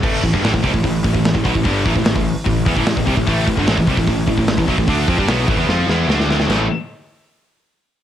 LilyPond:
<<
  \new Staff \with { instrumentName = "Distorted electric guitar" } { \clef bass \time 4/4 \key a \minor \tempo 4 = 149 <a, e a>8 <a, e>16 <g, d>16 <a, e>16 <a, e>16 <c g>16 <a, e>16 <a, e>8 <a, e>16 <a, e>8 <a, e>16 <b, fis>16 <a, e>16 | <g, d g>8 <a, e>16 <a, e>16 <a, e>16 <a, e>8 r16 <a, e>8 <e b>16 <a, e>16 <a, e>16 <a, e>16 <c g>16 <a, e>16 | <a, e a>8 <a, e>16 <g, d>16 <a, e>16 <a, e>16 <c g>16 <a, e>16 <a, e>8 <a, e>16 <a, e>8 <a, e>16 <b, fis>16 <a, e>16 | <d a d'>8 <f c'>16 <g d'>16 <b, fis b>8 <a, e>16 <e b>16 <f c' f'>8 <e b e'>8 <d a d'>4 |
<a, e a>8 r2. r8 | }
  \new Staff \with { instrumentName = "Distorted electric guitar" } { \clef bass \time 4/4 \key a \minor <a, e a>8 <a, e>16 <g, d>16 <a, e>16 <a, e>16 <c g>16 <a, e>16 <a, e>8 <a, e>16 <a, e>8 <a, e>16 <b, fis>16 <a, e>16 | <g, d g>8 <a, e>16 <a, e>16 <a, e>16 <a, e>8 r16 <a, e>8 <e b>16 <a, e>16 <a, e>16 <a, e>16 <c g>16 <a, e>16 | <a, e a>8 <a, e>16 <g, d>16 <a, e>16 <a, e>16 <c g>16 <a, e>16 <a, e>8 <a, e>16 <a, e>8 <a, e>16 <b, fis>16 <a, e>16 | <d a d'>8 <f c'>16 <g d'>16 <b, fis b>8 <a, e>16 <e b>16 <f c' f'>8 <e b e'>8 <d a d'>4 |
<a, e a>8 r2. r8 | }
  \new Staff \with { instrumentName = "Distorted electric guitar" } { \clef bass \time 4/4 \key a \minor <a, e a>8 <a, e>16 <g, d>16 <a, e>16 <a, e>16 <c g>16 <a, e>16 <a, e>8 <a, e>16 <a, e>8 <a, e>16 <b, fis>16 <a, e>16 | <g, d g>8 <a, e>16 <a, e>16 <a, e>16 <a, e>8 r16 <a, e>8 <e b>16 <a, e>16 <a, e>16 <a, e>16 <c g>16 <a, e>16 | <a, e a>8 <a, e>16 <g, d>16 <a, e>16 <a, e>16 <c g>16 <a, e>16 <a, e>8 <a, e>16 <a, e>8 <a, e>16 <b, fis>16 <a, e>16 | <d a d'>8 <f c'>16 <g d'>16 <b, fis b>8 <a, e>16 <e b>16 <f c' f'>8 <e b e'>8 <d a d'>4 |
<a, e a>8 r2. r8 | }
  \new Staff \with { instrumentName = "Picked electric bass" } { \clef bass \time 4/4 \key a \minor a,,8 a,,16 g,,16 a,,16 a,,16 c,16 a,,16 a,,8 a,,16 a,,8 a,,16 b,,16 a,,16 | g,,8 a,,16 a,,16 a,,16 a,,8 r16 a,,8 e,16 a,,16 a,,16 a,,16 c,16 a,,16 | a,,8 a,,16 g,,16 a,,16 a,,16 c,16 a,,16 a,,8 a,,16 a,,8 a,,16 b,,16 a,,16 | d,8 f,16 g,16 b,,8 a,,16 e,16 f,8 e,8 d,4 |
a,,8 r2. r8 | }
  \new DrumStaff \with { instrumentName = "Drums" } \drummode { \time 4/4 <cymc bd>8 <hho bd>16 bd16 <hho sn>16 bd16 <hho bd>16 bd16 <hho bd>8 <hho bd>16 bd16 <hho sn>16 bd16 <hho bd>16 bd16 | <hho bd>8 <hho bd>16 bd16 <hho sn>16 bd16 hho8 <hho bd>8 <hho bd>16 bd16 <hho sn>16 bd16 <hho bd>16 bd16 | <hho bd>8 <hho bd>16 bd16 <hho sn>16 bd16 <hho bd>16 <bd sn>16 <hho bd>8 <hho bd>16 bd16 <hho sn>16 bd16 <hho bd>16 bd16 | <hho bd>8 <hho bd>16 bd16 <hho sn>8 <hho bd>16 sn16 sn8 sn8 sn16 sn16 sn16 sn16 |
<cymc sn>4 r4 r4 r4 | }
>>